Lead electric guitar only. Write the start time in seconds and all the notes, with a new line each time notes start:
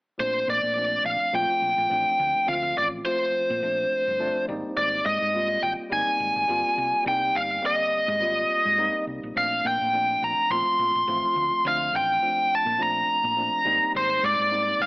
0.20 C5
0.50 D5
1.06 F5
1.35 G5
2.49 F5
2.78 D5
3.05 C5
4.77 D5
5.06 D#5
5.63 G5
5.93 G#5
7.08 G5
7.36 F5
7.66 D#5
9.37 F5
9.67 G5
10.24 A#5
10.52 C6
11.68 F5
11.96 G5
12.55 A5
12.83 A#5
13.97 C5
14.25 D5
14.82 F5